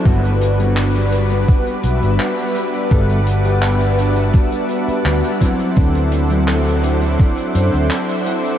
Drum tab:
HH |xxxxxxxxxxxxxxxx|xxxxxxxxxxxxxxxx|xxxxxxxxxxxxxxxx|
CP |----x-------x---|----x-------x---|----x-------x---|
BD |o-------o-------|o-------o-----o-|o-------o-------|